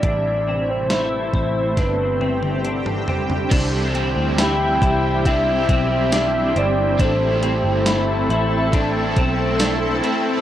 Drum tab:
CC |----------------|x---------------|----------------|
HH |x---x---x---x---|x-x-x-x-x-x-x-x-|x-x-x-x-x-x-x-x-|
TB |----------------|----x-------x---|----x-------x---|
SD |----o---o-------|----o-------o---|----o-------o---|
T1 |----------oo----|----------------|----------------|
T2 |-------------o--|----------------|----------------|
FT |--------------oo|----------------|----------------|
BD |o-----o-o-------|o-----o-o-o-----|o-------o-o-----|